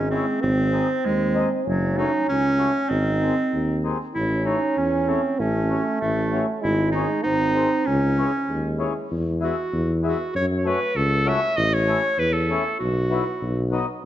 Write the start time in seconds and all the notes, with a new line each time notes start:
Already playing: G#1 G#3
0.11 G#3 C4 C#4 E4
0.41 G#1 C4
0.72 G#3 C4 D#4
1.05 D#2 G#3
1.34 G#3 C4 D#4
1.65 F#1 F#3 C#4
1.96 F#3 A3 C#4 D#4
2.28 C#2 C#4
2.58 F#3 A3 C#4
2.89 G#1 C4 D#4
3.20 D#3 G#3 C4
3.53 D#2
3.84 D#3 G#3 C4
4.15 A1 C#4 E4
4.44 E3 A3 C#4 D#4
4.77 E2 C#4
5.06 E3 A3 C4 C#4
5.39 A1 A3 C#4
5.69 F#3 A3 C#4
6.01 A1 A3
6.32 F#3 A3 C#4
6.61 G#1 G#3 E4
6.92 D#3 G#3 C#4 D#4
7.24 G#1 C4 D#4
7.54 D#3 G#3 C4
7.86 C#2 C#4
8.17 E3 G#3 C#4
8.49 D#2 G#3
8.78 E3 G#3 C#4
9.11 E2
9.40 G#3 B3 E4 F#4
9.73 E2
10.03 G#3 B3 E4 F#4
10.35 F#2 C#5
10.58 C#5
10.64 A3 C#4 F#4 B4
10.96 C#2 A4
11.25 A3 C#4 F#4 E5
11.57 A1 D#5
11.74 C#5
11.87 A3 C#4 E4
12.18 E2 B4
12.33 A4
12.49 A3 C#4 E4
12.79 B1 F#4
13.10 F#3 B3 E4
13.42 B1
13.71 F#3 B3 D#4
14.02 B3